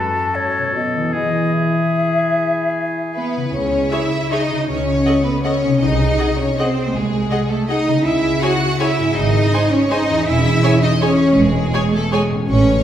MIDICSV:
0, 0, Header, 1, 10, 480
1, 0, Start_track
1, 0, Key_signature, 4, "major"
1, 0, Tempo, 394218
1, 1393, Time_signature, 3, 2, 24, 8
1, 4316, Key_signature, 4, "minor"
1, 5263, Tempo, 373599
1, 11023, Tempo, 367422
1, 16284, End_track
2, 0, Start_track
2, 0, Title_t, "Violin section"
2, 0, Program_c, 0, 48
2, 4773, Note_on_c, 0, 76, 39
2, 4871, Note_off_c, 0, 76, 0
2, 5260, Note_on_c, 0, 76, 44
2, 5362, Note_off_c, 0, 76, 0
2, 6209, Note_on_c, 0, 78, 40
2, 6312, Note_off_c, 0, 78, 0
2, 6702, Note_on_c, 0, 78, 42
2, 6805, Note_off_c, 0, 78, 0
2, 7663, Note_on_c, 0, 78, 39
2, 7766, Note_off_c, 0, 78, 0
2, 8181, Note_on_c, 0, 78, 39
2, 8284, Note_off_c, 0, 78, 0
2, 9110, Note_on_c, 0, 78, 43
2, 9213, Note_off_c, 0, 78, 0
2, 9604, Note_on_c, 0, 78, 44
2, 9706, Note_off_c, 0, 78, 0
2, 10537, Note_on_c, 0, 80, 47
2, 10639, Note_off_c, 0, 80, 0
2, 11016, Note_on_c, 0, 80, 47
2, 11121, Note_off_c, 0, 80, 0
2, 11978, Note_on_c, 0, 80, 46
2, 12083, Note_off_c, 0, 80, 0
2, 12469, Note_on_c, 0, 80, 49
2, 12573, Note_off_c, 0, 80, 0
2, 13415, Note_on_c, 0, 80, 52
2, 13520, Note_off_c, 0, 80, 0
2, 13918, Note_on_c, 0, 80, 49
2, 14023, Note_off_c, 0, 80, 0
2, 14857, Note_on_c, 0, 80, 49
2, 14961, Note_off_c, 0, 80, 0
2, 15371, Note_on_c, 0, 80, 58
2, 15475, Note_off_c, 0, 80, 0
2, 16284, End_track
3, 0, Start_track
3, 0, Title_t, "Flute"
3, 0, Program_c, 1, 73
3, 0, Note_on_c, 1, 81, 67
3, 426, Note_on_c, 1, 73, 60
3, 445, Note_off_c, 1, 81, 0
3, 920, Note_off_c, 1, 73, 0
3, 925, Note_on_c, 1, 75, 57
3, 1383, Note_off_c, 1, 75, 0
3, 1391, Note_on_c, 1, 75, 57
3, 1866, Note_on_c, 1, 76, 59
3, 1884, Note_off_c, 1, 75, 0
3, 4081, Note_off_c, 1, 76, 0
3, 16284, End_track
4, 0, Start_track
4, 0, Title_t, "Violin section"
4, 0, Program_c, 2, 48
4, 3834, Note_on_c, 2, 71, 44
4, 4277, Note_off_c, 2, 71, 0
4, 4300, Note_on_c, 2, 73, 52
4, 4764, Note_on_c, 2, 76, 59
4, 4775, Note_off_c, 2, 73, 0
4, 5249, Note_on_c, 2, 75, 55
4, 5254, Note_off_c, 2, 76, 0
4, 5719, Note_off_c, 2, 75, 0
4, 5736, Note_on_c, 2, 73, 59
4, 6448, Note_off_c, 2, 73, 0
4, 6449, Note_on_c, 2, 71, 53
4, 6689, Note_on_c, 2, 73, 59
4, 6701, Note_off_c, 2, 71, 0
4, 7161, Note_off_c, 2, 73, 0
4, 7171, Note_on_c, 2, 75, 57
4, 7893, Note_off_c, 2, 75, 0
4, 7903, Note_on_c, 2, 73, 61
4, 8156, Note_off_c, 2, 73, 0
4, 8158, Note_on_c, 2, 72, 55
4, 8622, Note_off_c, 2, 72, 0
4, 8624, Note_on_c, 2, 68, 60
4, 9336, Note_on_c, 2, 69, 55
4, 9342, Note_off_c, 2, 68, 0
4, 9586, Note_off_c, 2, 69, 0
4, 9593, Note_on_c, 2, 75, 57
4, 10050, Note_off_c, 2, 75, 0
4, 10072, Note_on_c, 2, 76, 60
4, 10525, Note_on_c, 2, 78, 67
4, 10530, Note_off_c, 2, 76, 0
4, 11018, Note_off_c, 2, 78, 0
4, 11024, Note_on_c, 2, 76, 60
4, 11486, Note_on_c, 2, 75, 68
4, 11495, Note_off_c, 2, 76, 0
4, 12208, Note_on_c, 2, 73, 66
4, 12215, Note_off_c, 2, 75, 0
4, 12462, Note_off_c, 2, 73, 0
4, 12467, Note_on_c, 2, 75, 67
4, 12941, Note_off_c, 2, 75, 0
4, 12948, Note_on_c, 2, 76, 70
4, 13654, Note_off_c, 2, 76, 0
4, 13658, Note_on_c, 2, 75, 67
4, 13903, Note_off_c, 2, 75, 0
4, 13910, Note_on_c, 2, 73, 63
4, 14380, Note_on_c, 2, 68, 65
4, 14384, Note_off_c, 2, 73, 0
4, 15100, Note_on_c, 2, 69, 68
4, 15108, Note_off_c, 2, 68, 0
4, 15348, Note_off_c, 2, 69, 0
4, 15351, Note_on_c, 2, 68, 54
4, 15449, Note_off_c, 2, 68, 0
4, 15844, Note_on_c, 2, 73, 70
4, 16278, Note_off_c, 2, 73, 0
4, 16284, End_track
5, 0, Start_track
5, 0, Title_t, "Viola section"
5, 0, Program_c, 3, 48
5, 4775, Note_on_c, 3, 73, 40
5, 4777, Note_on_c, 3, 68, 43
5, 4873, Note_off_c, 3, 73, 0
5, 4875, Note_off_c, 3, 68, 0
5, 5254, Note_on_c, 3, 73, 39
5, 5257, Note_on_c, 3, 68, 35
5, 5357, Note_off_c, 3, 73, 0
5, 5359, Note_off_c, 3, 68, 0
5, 6211, Note_on_c, 3, 75, 42
5, 6218, Note_on_c, 3, 69, 41
5, 6314, Note_off_c, 3, 75, 0
5, 6321, Note_off_c, 3, 69, 0
5, 6707, Note_on_c, 3, 69, 33
5, 6711, Note_on_c, 3, 75, 38
5, 6809, Note_off_c, 3, 69, 0
5, 6814, Note_off_c, 3, 75, 0
5, 7661, Note_on_c, 3, 75, 38
5, 7662, Note_on_c, 3, 68, 42
5, 7763, Note_off_c, 3, 75, 0
5, 7765, Note_off_c, 3, 68, 0
5, 8171, Note_on_c, 3, 68, 35
5, 8171, Note_on_c, 3, 75, 42
5, 8274, Note_off_c, 3, 68, 0
5, 8274, Note_off_c, 3, 75, 0
5, 9103, Note_on_c, 3, 75, 42
5, 9111, Note_on_c, 3, 68, 43
5, 9206, Note_off_c, 3, 75, 0
5, 9213, Note_off_c, 3, 68, 0
5, 9589, Note_on_c, 3, 68, 38
5, 9592, Note_on_c, 3, 75, 38
5, 9691, Note_off_c, 3, 68, 0
5, 9695, Note_off_c, 3, 75, 0
5, 10531, Note_on_c, 3, 73, 44
5, 10534, Note_on_c, 3, 68, 44
5, 10634, Note_off_c, 3, 73, 0
5, 10637, Note_off_c, 3, 68, 0
5, 11011, Note_on_c, 3, 73, 40
5, 11013, Note_on_c, 3, 68, 36
5, 11115, Note_off_c, 3, 73, 0
5, 11117, Note_off_c, 3, 68, 0
5, 11973, Note_on_c, 3, 72, 50
5, 11975, Note_on_c, 3, 68, 49
5, 12077, Note_off_c, 3, 72, 0
5, 12079, Note_off_c, 3, 68, 0
5, 12458, Note_on_c, 3, 72, 40
5, 12461, Note_on_c, 3, 68, 41
5, 12563, Note_off_c, 3, 72, 0
5, 12566, Note_off_c, 3, 68, 0
5, 13406, Note_on_c, 3, 68, 49
5, 13410, Note_on_c, 3, 73, 55
5, 13511, Note_off_c, 3, 68, 0
5, 13514, Note_off_c, 3, 73, 0
5, 13906, Note_on_c, 3, 73, 48
5, 13911, Note_on_c, 3, 68, 46
5, 14010, Note_off_c, 3, 73, 0
5, 14015, Note_off_c, 3, 68, 0
5, 14851, Note_on_c, 3, 68, 52
5, 14851, Note_on_c, 3, 73, 53
5, 14955, Note_off_c, 3, 73, 0
5, 14956, Note_off_c, 3, 68, 0
5, 15346, Note_on_c, 3, 73, 49
5, 15350, Note_on_c, 3, 68, 48
5, 15450, Note_off_c, 3, 73, 0
5, 15454, Note_off_c, 3, 68, 0
5, 16284, End_track
6, 0, Start_track
6, 0, Title_t, "Oboe"
6, 0, Program_c, 4, 68
6, 0, Note_on_c, 4, 69, 47
6, 1379, Note_on_c, 4, 68, 40
6, 1397, Note_off_c, 4, 69, 0
6, 4080, Note_off_c, 4, 68, 0
6, 16284, End_track
7, 0, Start_track
7, 0, Title_t, "Clarinet"
7, 0, Program_c, 5, 71
7, 0, Note_on_c, 5, 66, 46
7, 930, Note_on_c, 5, 59, 45
7, 948, Note_off_c, 5, 66, 0
7, 1397, Note_on_c, 5, 64, 43
7, 1415, Note_off_c, 5, 59, 0
7, 4089, Note_off_c, 5, 64, 0
7, 16284, End_track
8, 0, Start_track
8, 0, Title_t, "Harp"
8, 0, Program_c, 6, 46
8, 0, Note_on_c, 6, 42, 44
8, 0, Note_on_c, 6, 61, 36
8, 0, Note_on_c, 6, 66, 39
8, 0, Note_on_c, 6, 69, 37
8, 706, Note_on_c, 6, 47, 35
8, 760, Note_on_c, 6, 59, 28
8, 801, Note_off_c, 6, 66, 0
8, 816, Note_on_c, 6, 66, 33
8, 832, Note_off_c, 6, 42, 0
8, 854, Note_off_c, 6, 69, 0
8, 861, Note_off_c, 6, 61, 0
8, 869, Note_on_c, 6, 69, 31
8, 1164, Note_on_c, 6, 52, 42
8, 1207, Note_off_c, 6, 59, 0
8, 1222, Note_on_c, 6, 59, 33
8, 1273, Note_on_c, 6, 64, 36
8, 1301, Note_off_c, 6, 47, 0
8, 1330, Note_on_c, 6, 68, 32
8, 1356, Note_off_c, 6, 66, 0
8, 1383, Note_off_c, 6, 69, 0
8, 4095, Note_on_c, 6, 49, 44
8, 4150, Note_on_c, 6, 61, 38
8, 4190, Note_off_c, 6, 64, 0
8, 4205, Note_on_c, 6, 64, 40
8, 4220, Note_off_c, 6, 52, 0
8, 4245, Note_off_c, 6, 68, 0
8, 4248, Note_off_c, 6, 59, 0
8, 4260, Note_on_c, 6, 68, 39
8, 5486, Note_off_c, 6, 49, 0
8, 5501, Note_on_c, 6, 49, 49
8, 5557, Note_on_c, 6, 63, 38
8, 5615, Note_on_c, 6, 66, 39
8, 5677, Note_on_c, 6, 69, 38
8, 5695, Note_off_c, 6, 64, 0
8, 5724, Note_off_c, 6, 68, 0
8, 6952, Note_on_c, 6, 48, 51
8, 6995, Note_off_c, 6, 63, 0
8, 7011, Note_on_c, 6, 63, 39
8, 7054, Note_off_c, 6, 66, 0
8, 7069, Note_on_c, 6, 66, 39
8, 7080, Note_off_c, 6, 49, 0
8, 7110, Note_off_c, 6, 61, 0
8, 7128, Note_on_c, 6, 68, 39
8, 7168, Note_off_c, 6, 69, 0
8, 9828, Note_on_c, 6, 49, 55
8, 9886, Note_on_c, 6, 61, 41
8, 9946, Note_on_c, 6, 64, 39
8, 9961, Note_off_c, 6, 48, 0
8, 9990, Note_off_c, 6, 63, 0
8, 9991, Note_off_c, 6, 68, 0
8, 10007, Note_on_c, 6, 68, 39
8, 10019, Note_off_c, 6, 66, 0
8, 11255, Note_on_c, 6, 44, 49
8, 11316, Note_on_c, 6, 60, 44
8, 11361, Note_off_c, 6, 68, 0
8, 11377, Note_on_c, 6, 68, 43
8, 11396, Note_off_c, 6, 49, 0
8, 11425, Note_off_c, 6, 61, 0
8, 11456, Note_off_c, 6, 64, 0
8, 12706, Note_on_c, 6, 40, 59
8, 12763, Note_on_c, 6, 61, 43
8, 12809, Note_off_c, 6, 68, 0
8, 12824, Note_on_c, 6, 68, 51
8, 12840, Note_off_c, 6, 44, 0
8, 12870, Note_off_c, 6, 60, 0
8, 15592, Note_on_c, 6, 45, 57
8, 15639, Note_off_c, 6, 61, 0
8, 15654, Note_on_c, 6, 61, 56
8, 15713, Note_on_c, 6, 66, 54
8, 15733, Note_off_c, 6, 40, 0
8, 15770, Note_on_c, 6, 69, 54
8, 15792, Note_off_c, 6, 68, 0
8, 16284, Note_off_c, 6, 45, 0
8, 16284, Note_off_c, 6, 61, 0
8, 16284, Note_off_c, 6, 66, 0
8, 16284, Note_off_c, 6, 69, 0
8, 16284, End_track
9, 0, Start_track
9, 0, Title_t, "Cello section"
9, 0, Program_c, 7, 48
9, 3835, Note_on_c, 7, 59, 59
9, 4277, Note_off_c, 7, 59, 0
9, 4308, Note_on_c, 7, 61, 67
9, 4770, Note_off_c, 7, 61, 0
9, 4778, Note_on_c, 7, 64, 63
9, 5253, Note_on_c, 7, 63, 66
9, 5261, Note_off_c, 7, 64, 0
9, 5730, Note_off_c, 7, 63, 0
9, 5736, Note_on_c, 7, 61, 68
9, 6448, Note_off_c, 7, 61, 0
9, 6462, Note_on_c, 7, 59, 55
9, 6702, Note_off_c, 7, 59, 0
9, 6711, Note_on_c, 7, 61, 66
9, 7172, Note_off_c, 7, 61, 0
9, 7185, Note_on_c, 7, 63, 73
9, 7915, Note_off_c, 7, 63, 0
9, 7915, Note_on_c, 7, 61, 61
9, 8162, Note_off_c, 7, 61, 0
9, 8163, Note_on_c, 7, 60, 72
9, 8615, Note_off_c, 7, 60, 0
9, 8622, Note_on_c, 7, 56, 67
9, 9341, Note_off_c, 7, 56, 0
9, 9342, Note_on_c, 7, 57, 62
9, 9588, Note_off_c, 7, 57, 0
9, 9589, Note_on_c, 7, 63, 68
9, 10057, Note_off_c, 7, 63, 0
9, 10058, Note_on_c, 7, 64, 70
9, 10532, Note_off_c, 7, 64, 0
9, 10535, Note_on_c, 7, 66, 65
9, 11022, Note_on_c, 7, 64, 72
9, 11024, Note_off_c, 7, 66, 0
9, 11484, Note_off_c, 7, 64, 0
9, 11487, Note_on_c, 7, 63, 77
9, 12203, Note_on_c, 7, 61, 71
9, 12215, Note_off_c, 7, 63, 0
9, 12454, Note_on_c, 7, 63, 83
9, 12459, Note_off_c, 7, 61, 0
9, 12925, Note_on_c, 7, 64, 83
9, 12934, Note_off_c, 7, 63, 0
9, 13657, Note_off_c, 7, 64, 0
9, 13660, Note_on_c, 7, 63, 74
9, 13760, Note_off_c, 7, 63, 0
9, 13911, Note_on_c, 7, 61, 84
9, 14374, Note_on_c, 7, 56, 78
9, 14375, Note_off_c, 7, 61, 0
9, 15098, Note_on_c, 7, 57, 70
9, 15105, Note_off_c, 7, 56, 0
9, 15343, Note_on_c, 7, 56, 75
9, 15352, Note_off_c, 7, 57, 0
9, 15588, Note_off_c, 7, 56, 0
9, 15829, Note_on_c, 7, 61, 81
9, 16270, Note_off_c, 7, 61, 0
9, 16284, End_track
10, 0, Start_track
10, 0, Title_t, "Double bass section"
10, 0, Program_c, 8, 48
10, 4297, Note_on_c, 8, 37, 56
10, 4693, Note_off_c, 8, 37, 0
10, 5726, Note_on_c, 8, 37, 54
10, 6126, Note_off_c, 8, 37, 0
10, 7174, Note_on_c, 8, 36, 60
10, 7571, Note_off_c, 8, 36, 0
10, 8624, Note_on_c, 8, 36, 57
10, 9011, Note_off_c, 8, 36, 0
10, 10056, Note_on_c, 8, 37, 51
10, 10449, Note_off_c, 8, 37, 0
10, 11488, Note_on_c, 8, 32, 56
10, 11885, Note_off_c, 8, 32, 0
10, 12938, Note_on_c, 8, 28, 60
10, 13332, Note_off_c, 8, 28, 0
10, 14371, Note_on_c, 8, 28, 69
10, 14770, Note_off_c, 8, 28, 0
10, 15834, Note_on_c, 8, 33, 67
10, 16223, Note_off_c, 8, 33, 0
10, 16284, End_track
0, 0, End_of_file